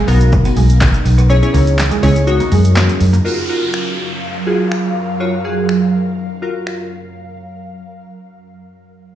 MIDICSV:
0, 0, Header, 1, 8, 480
1, 0, Start_track
1, 0, Key_signature, 6, "major"
1, 0, Tempo, 487805
1, 1277, Time_signature, 4, 2, 24, 8
1, 9004, End_track
2, 0, Start_track
2, 0, Title_t, "Synth keys"
2, 0, Program_c, 0, 88
2, 74, Note_on_c, 0, 59, 90
2, 76, Note_on_c, 0, 63, 84
2, 78, Note_on_c, 0, 66, 81
2, 80, Note_on_c, 0, 70, 99
2, 629, Note_off_c, 0, 59, 0
2, 629, Note_off_c, 0, 63, 0
2, 630, Note_off_c, 0, 66, 0
2, 631, Note_off_c, 0, 70, 0
2, 1274, Note_on_c, 0, 61, 89
2, 1275, Note_on_c, 0, 64, 78
2, 1277, Note_on_c, 0, 68, 80
2, 1279, Note_on_c, 0, 73, 96
2, 1348, Note_off_c, 0, 61, 0
2, 1349, Note_off_c, 0, 64, 0
2, 1350, Note_off_c, 0, 68, 0
2, 1351, Note_off_c, 0, 73, 0
2, 1401, Note_on_c, 0, 61, 91
2, 1402, Note_on_c, 0, 64, 85
2, 1403, Note_on_c, 0, 68, 82
2, 1405, Note_on_c, 0, 73, 93
2, 1740, Note_off_c, 0, 61, 0
2, 1740, Note_off_c, 0, 64, 0
2, 1741, Note_off_c, 0, 68, 0
2, 1742, Note_off_c, 0, 73, 0
2, 1994, Note_on_c, 0, 61, 88
2, 1996, Note_on_c, 0, 64, 80
2, 1997, Note_on_c, 0, 68, 81
2, 1998, Note_on_c, 0, 73, 101
2, 2227, Note_off_c, 0, 73, 0
2, 2234, Note_on_c, 0, 63, 91
2, 2235, Note_off_c, 0, 61, 0
2, 2235, Note_on_c, 0, 66, 83
2, 2236, Note_off_c, 0, 64, 0
2, 2236, Note_on_c, 0, 70, 81
2, 2237, Note_off_c, 0, 68, 0
2, 2239, Note_on_c, 0, 73, 100
2, 3007, Note_off_c, 0, 63, 0
2, 3007, Note_off_c, 0, 66, 0
2, 3008, Note_off_c, 0, 70, 0
2, 3009, Note_off_c, 0, 73, 0
2, 3195, Note_on_c, 0, 65, 83
2, 3197, Note_on_c, 0, 66, 78
2, 3201, Note_on_c, 0, 70, 91
2, 3339, Note_off_c, 0, 65, 0
2, 3340, Note_off_c, 0, 66, 0
2, 3342, Note_off_c, 0, 70, 0
2, 3436, Note_on_c, 0, 65, 80
2, 3438, Note_on_c, 0, 66, 72
2, 3440, Note_on_c, 0, 70, 91
2, 3990, Note_off_c, 0, 65, 0
2, 3990, Note_off_c, 0, 66, 0
2, 3991, Note_off_c, 0, 70, 0
2, 4395, Note_on_c, 0, 65, 74
2, 4397, Note_on_c, 0, 66, 67
2, 4400, Note_on_c, 0, 68, 85
2, 4812, Note_off_c, 0, 65, 0
2, 4813, Note_off_c, 0, 66, 0
2, 4814, Note_off_c, 0, 68, 0
2, 5117, Note_on_c, 0, 65, 80
2, 5119, Note_on_c, 0, 66, 76
2, 5121, Note_on_c, 0, 73, 88
2, 5260, Note_off_c, 0, 65, 0
2, 5261, Note_off_c, 0, 66, 0
2, 5263, Note_off_c, 0, 73, 0
2, 5356, Note_on_c, 0, 65, 74
2, 5358, Note_on_c, 0, 66, 74
2, 5362, Note_on_c, 0, 68, 84
2, 5909, Note_off_c, 0, 65, 0
2, 5910, Note_off_c, 0, 66, 0
2, 5912, Note_off_c, 0, 68, 0
2, 6318, Note_on_c, 0, 65, 70
2, 6320, Note_on_c, 0, 66, 65
2, 6323, Note_on_c, 0, 70, 77
2, 6733, Note_off_c, 0, 65, 0
2, 6734, Note_off_c, 0, 66, 0
2, 6736, Note_off_c, 0, 70, 0
2, 9004, End_track
3, 0, Start_track
3, 0, Title_t, "Ambient pad"
3, 0, Program_c, 1, 92
3, 0, Note_on_c, 1, 59, 75
3, 0, Note_on_c, 1, 63, 91
3, 0, Note_on_c, 1, 70, 86
3, 1255, Note_off_c, 1, 59, 0
3, 1256, Note_off_c, 1, 63, 0
3, 1256, Note_off_c, 1, 70, 0
3, 3202, Note_on_c, 1, 42, 76
3, 3202, Note_on_c, 1, 54, 69
3, 3202, Note_on_c, 1, 70, 88
3, 3202, Note_on_c, 1, 77, 72
3, 7001, Note_off_c, 1, 42, 0
3, 7001, Note_off_c, 1, 54, 0
3, 7001, Note_off_c, 1, 70, 0
3, 7001, Note_off_c, 1, 77, 0
3, 9004, End_track
4, 0, Start_track
4, 0, Title_t, "Clean electric guitar"
4, 0, Program_c, 2, 27
4, 80, Note_on_c, 2, 58, 85
4, 168, Note_off_c, 2, 58, 0
4, 447, Note_on_c, 2, 59, 77
4, 526, Note_off_c, 2, 59, 0
4, 558, Note_on_c, 2, 56, 84
4, 647, Note_off_c, 2, 56, 0
4, 800, Note_on_c, 2, 58, 93
4, 888, Note_off_c, 2, 58, 0
4, 1162, Note_on_c, 2, 59, 78
4, 1242, Note_off_c, 2, 59, 0
4, 1277, Note_on_c, 2, 61, 84
4, 1366, Note_off_c, 2, 61, 0
4, 1516, Note_on_c, 2, 58, 90
4, 1605, Note_off_c, 2, 58, 0
4, 1884, Note_on_c, 2, 56, 75
4, 1963, Note_off_c, 2, 56, 0
4, 1998, Note_on_c, 2, 56, 95
4, 2087, Note_off_c, 2, 56, 0
4, 2365, Note_on_c, 2, 58, 74
4, 2444, Note_off_c, 2, 58, 0
4, 2477, Note_on_c, 2, 56, 86
4, 2566, Note_off_c, 2, 56, 0
4, 2717, Note_on_c, 2, 58, 85
4, 2807, Note_off_c, 2, 58, 0
4, 3082, Note_on_c, 2, 58, 73
4, 3162, Note_off_c, 2, 58, 0
4, 9004, End_track
5, 0, Start_track
5, 0, Title_t, "Fingered electric bass"
5, 0, Program_c, 3, 33
5, 78, Note_on_c, 3, 35, 105
5, 427, Note_off_c, 3, 35, 0
5, 558, Note_on_c, 3, 35, 103
5, 907, Note_off_c, 3, 35, 0
5, 1037, Note_on_c, 3, 35, 100
5, 1387, Note_off_c, 3, 35, 0
5, 1518, Note_on_c, 3, 37, 95
5, 1867, Note_off_c, 3, 37, 0
5, 1998, Note_on_c, 3, 37, 103
5, 2347, Note_off_c, 3, 37, 0
5, 2480, Note_on_c, 3, 42, 97
5, 2829, Note_off_c, 3, 42, 0
5, 2959, Note_on_c, 3, 42, 101
5, 3133, Note_off_c, 3, 42, 0
5, 9004, End_track
6, 0, Start_track
6, 0, Title_t, "Downlifter"
6, 0, Program_c, 4, 103
6, 3198, Note_on_c, 4, 60, 81
6, 7038, Note_off_c, 4, 60, 0
6, 9004, End_track
7, 0, Start_track
7, 0, Title_t, "Muted clean electric guitar strokes"
7, 321, Note_on_c, 9, 29, 48
7, 419, Note_off_c, 9, 29, 0
7, 1037, Note_on_c, 9, 29, 50
7, 1135, Note_off_c, 9, 29, 0
7, 1402, Note_on_c, 9, 29, 47
7, 1500, Note_off_c, 9, 29, 0
7, 1758, Note_on_c, 9, 29, 49
7, 1856, Note_off_c, 9, 29, 0
7, 2239, Note_on_c, 9, 29, 49
7, 2337, Note_off_c, 9, 29, 0
7, 2846, Note_on_c, 9, 29, 47
7, 2945, Note_off_c, 9, 29, 0
7, 9004, End_track
8, 0, Start_track
8, 0, Title_t, "Drums"
8, 75, Note_on_c, 9, 54, 57
8, 79, Note_on_c, 9, 46, 68
8, 79, Note_on_c, 9, 82, 51
8, 173, Note_off_c, 9, 54, 0
8, 177, Note_off_c, 9, 46, 0
8, 177, Note_off_c, 9, 82, 0
8, 205, Note_on_c, 9, 42, 81
8, 205, Note_on_c, 9, 82, 83
8, 303, Note_off_c, 9, 42, 0
8, 303, Note_off_c, 9, 82, 0
8, 317, Note_on_c, 9, 82, 79
8, 322, Note_on_c, 9, 36, 111
8, 415, Note_off_c, 9, 82, 0
8, 420, Note_off_c, 9, 36, 0
8, 444, Note_on_c, 9, 42, 60
8, 444, Note_on_c, 9, 82, 58
8, 446, Note_on_c, 9, 54, 49
8, 542, Note_off_c, 9, 42, 0
8, 542, Note_off_c, 9, 82, 0
8, 544, Note_off_c, 9, 54, 0
8, 556, Note_on_c, 9, 46, 73
8, 556, Note_on_c, 9, 82, 51
8, 559, Note_on_c, 9, 54, 54
8, 655, Note_off_c, 9, 46, 0
8, 655, Note_off_c, 9, 82, 0
8, 657, Note_off_c, 9, 54, 0
8, 686, Note_on_c, 9, 54, 36
8, 687, Note_on_c, 9, 42, 89
8, 687, Note_on_c, 9, 82, 89
8, 785, Note_off_c, 9, 42, 0
8, 785, Note_off_c, 9, 54, 0
8, 785, Note_off_c, 9, 82, 0
8, 795, Note_on_c, 9, 82, 86
8, 798, Note_on_c, 9, 36, 109
8, 800, Note_on_c, 9, 39, 127
8, 801, Note_on_c, 9, 54, 91
8, 809, Note_on_c, 9, 38, 110
8, 893, Note_off_c, 9, 82, 0
8, 897, Note_off_c, 9, 36, 0
8, 898, Note_off_c, 9, 39, 0
8, 899, Note_off_c, 9, 54, 0
8, 908, Note_off_c, 9, 38, 0
8, 928, Note_on_c, 9, 42, 58
8, 928, Note_on_c, 9, 82, 57
8, 1026, Note_off_c, 9, 42, 0
8, 1026, Note_off_c, 9, 82, 0
8, 1037, Note_on_c, 9, 54, 60
8, 1040, Note_on_c, 9, 46, 71
8, 1040, Note_on_c, 9, 82, 53
8, 1135, Note_off_c, 9, 54, 0
8, 1138, Note_off_c, 9, 46, 0
8, 1138, Note_off_c, 9, 82, 0
8, 1167, Note_on_c, 9, 42, 78
8, 1167, Note_on_c, 9, 82, 79
8, 1265, Note_off_c, 9, 42, 0
8, 1265, Note_off_c, 9, 82, 0
8, 1278, Note_on_c, 9, 54, 51
8, 1278, Note_on_c, 9, 82, 69
8, 1377, Note_off_c, 9, 54, 0
8, 1377, Note_off_c, 9, 82, 0
8, 1407, Note_on_c, 9, 42, 51
8, 1407, Note_on_c, 9, 82, 52
8, 1506, Note_off_c, 9, 42, 0
8, 1506, Note_off_c, 9, 82, 0
8, 1519, Note_on_c, 9, 54, 49
8, 1520, Note_on_c, 9, 46, 75
8, 1520, Note_on_c, 9, 82, 56
8, 1617, Note_off_c, 9, 54, 0
8, 1618, Note_off_c, 9, 46, 0
8, 1618, Note_off_c, 9, 82, 0
8, 1647, Note_on_c, 9, 42, 84
8, 1647, Note_on_c, 9, 82, 80
8, 1648, Note_on_c, 9, 54, 29
8, 1745, Note_off_c, 9, 42, 0
8, 1745, Note_off_c, 9, 82, 0
8, 1747, Note_off_c, 9, 54, 0
8, 1759, Note_on_c, 9, 39, 104
8, 1759, Note_on_c, 9, 82, 82
8, 1760, Note_on_c, 9, 54, 93
8, 1768, Note_on_c, 9, 38, 88
8, 1857, Note_off_c, 9, 39, 0
8, 1857, Note_off_c, 9, 82, 0
8, 1858, Note_off_c, 9, 54, 0
8, 1866, Note_off_c, 9, 38, 0
8, 1884, Note_on_c, 9, 42, 61
8, 1884, Note_on_c, 9, 82, 58
8, 1982, Note_off_c, 9, 42, 0
8, 1982, Note_off_c, 9, 82, 0
8, 1998, Note_on_c, 9, 46, 67
8, 1998, Note_on_c, 9, 54, 57
8, 1998, Note_on_c, 9, 82, 49
8, 2096, Note_off_c, 9, 54, 0
8, 2097, Note_off_c, 9, 46, 0
8, 2097, Note_off_c, 9, 82, 0
8, 2126, Note_on_c, 9, 42, 80
8, 2126, Note_on_c, 9, 82, 81
8, 2128, Note_on_c, 9, 54, 33
8, 2225, Note_off_c, 9, 42, 0
8, 2225, Note_off_c, 9, 82, 0
8, 2227, Note_off_c, 9, 54, 0
8, 2237, Note_on_c, 9, 82, 80
8, 2335, Note_off_c, 9, 82, 0
8, 2364, Note_on_c, 9, 42, 59
8, 2364, Note_on_c, 9, 82, 61
8, 2367, Note_on_c, 9, 54, 49
8, 2463, Note_off_c, 9, 42, 0
8, 2463, Note_off_c, 9, 82, 0
8, 2466, Note_off_c, 9, 54, 0
8, 2477, Note_on_c, 9, 46, 71
8, 2477, Note_on_c, 9, 82, 51
8, 2479, Note_on_c, 9, 54, 53
8, 2576, Note_off_c, 9, 46, 0
8, 2576, Note_off_c, 9, 82, 0
8, 2577, Note_off_c, 9, 54, 0
8, 2607, Note_on_c, 9, 42, 90
8, 2607, Note_on_c, 9, 82, 88
8, 2608, Note_on_c, 9, 54, 34
8, 2705, Note_off_c, 9, 42, 0
8, 2705, Note_off_c, 9, 82, 0
8, 2706, Note_off_c, 9, 54, 0
8, 2714, Note_on_c, 9, 82, 84
8, 2719, Note_on_c, 9, 39, 126
8, 2722, Note_on_c, 9, 54, 91
8, 2728, Note_on_c, 9, 38, 110
8, 2812, Note_off_c, 9, 82, 0
8, 2817, Note_off_c, 9, 39, 0
8, 2820, Note_off_c, 9, 54, 0
8, 2827, Note_off_c, 9, 38, 0
8, 2848, Note_on_c, 9, 42, 60
8, 2848, Note_on_c, 9, 82, 55
8, 2946, Note_off_c, 9, 42, 0
8, 2946, Note_off_c, 9, 82, 0
8, 2957, Note_on_c, 9, 46, 74
8, 2957, Note_on_c, 9, 82, 54
8, 2958, Note_on_c, 9, 54, 61
8, 3055, Note_off_c, 9, 46, 0
8, 3055, Note_off_c, 9, 82, 0
8, 3057, Note_off_c, 9, 54, 0
8, 3087, Note_on_c, 9, 42, 77
8, 3087, Note_on_c, 9, 54, 32
8, 3087, Note_on_c, 9, 82, 75
8, 3185, Note_off_c, 9, 42, 0
8, 3185, Note_off_c, 9, 54, 0
8, 3185, Note_off_c, 9, 82, 0
8, 3678, Note_on_c, 9, 26, 95
8, 3777, Note_off_c, 9, 26, 0
8, 4641, Note_on_c, 9, 26, 117
8, 4739, Note_off_c, 9, 26, 0
8, 5599, Note_on_c, 9, 26, 95
8, 5698, Note_off_c, 9, 26, 0
8, 6562, Note_on_c, 9, 26, 108
8, 6660, Note_off_c, 9, 26, 0
8, 9004, End_track
0, 0, End_of_file